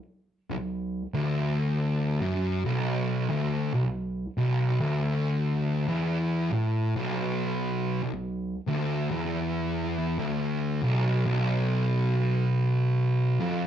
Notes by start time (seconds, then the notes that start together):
0.50 B1
1.14 D2
2.22 F#2
2.65 B1
3.30 D2
3.74 B1
4.37 B1
4.80 D2
5.88 E2
6.52 A2
6.96 B1
8.03 B1
8.67 D2
9.11 E2
10.19 D2
10.83 B1
11.26 B1
13.40 F2